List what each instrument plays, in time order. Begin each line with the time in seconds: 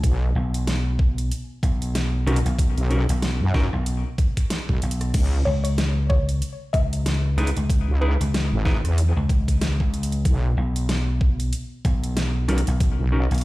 0.04 wobble bass B1, kick, closed hi-hat
0.35 slap bass B1
0.54 closed hi-hat
0.67 snare, closed hi-hat
0.99 kick
1.18 closed hi-hat
1.32 closed hi-hat
1.63 slap bass B1, kick, closed hi-hat
1.82 closed hi-hat
1.95 snare, closed hi-hat
2.26 wobble bass B1, clean electric guitar C#4 D#4 F#4 A#4, cross-stick, closed hi-hat
2.36 closed hi-hat
2.46 slap bass B1, closed hi-hat
2.59 kick, closed hi-hat
2.77 wobble bass B1, closed hi-hat
2.90 clean electric guitar C#4 D#4 F#4 A#4, closed hi-hat
3.09 slap bass B1, closed hi-hat
3.22 snare, closed hi-hat
3.41 wobble bass F#2
3.54 clean electric guitar C#4 D#4 F#4 A#4, kick, snare
3.73 slap bass B1, cross-stick
3.86 closed hi-hat
4.18 kick, closed hi-hat
4.37 kick, closed hi-hat
4.50 snare, closed hi-hat
4.69 wobble bass B1, kick
4.82 slap bass B1, closed hi-hat
4.91 closed hi-hat
5.01 cross-stick, closed hi-hat
5.14 wobble bass C#2, kick, closed hi-hat, crash
5.45 slap bass C#2, synth pluck C#5
5.64 synth pluck C#5, closed hi-hat
5.78 snare, closed hi-hat
6.10 synth pluck C#5, kick
6.29 closed hi-hat
6.42 closed hi-hat
6.73 slap bass C#2, synth pluck E5, kick, closed hi-hat
6.93 closed hi-hat
7.06 snare, closed hi-hat
7.37 wobble bass C#2, clean electric guitar D#4 E4 G#4 B4, cross-stick, closed hi-hat
7.47 closed hi-hat
7.57 slap bass C#2, closed hi-hat
7.70 kick, closed hi-hat
7.88 wobble bass C#2
8.01 clean electric guitar D#4 E4 G#4 B4, synth pluck B4
8.21 slap bass C#2, closed hi-hat
8.34 snare, closed hi-hat
8.52 wobble bass G#1
8.65 clean electric guitar D#4 E4 G#4 B4, kick, snare
8.84 wobble bass E2, cross-stick, closed hi-hat
8.98 closed hi-hat
9.17 slap bass C#2
9.29 kick, closed hi-hat
9.48 kick, closed hi-hat
9.61 snare, closed hi-hat
9.80 slap bass C#2, kick
9.94 closed hi-hat
10.03 closed hi-hat
10.12 closed hi-hat
10.25 wobble bass B1, kick, closed hi-hat
10.57 slap bass B1
10.76 closed hi-hat
10.89 snare, closed hi-hat
11.21 kick
11.40 closed hi-hat
11.53 closed hi-hat
11.85 slap bass B1, kick, closed hi-hat
12.04 closed hi-hat
12.17 snare, closed hi-hat
12.48 wobble bass B1, clean electric guitar C#4 D#4 F#4 A#4, cross-stick, closed hi-hat
12.58 closed hi-hat
12.67 slap bass B1, closed hi-hat
12.80 kick, closed hi-hat
12.99 wobble bass B1
13.12 clean electric guitar C#4 D#4 F#4 A#4
13.31 slap bass B1, closed hi-hat
13.34 closed hi-hat
13.38 closed hi-hat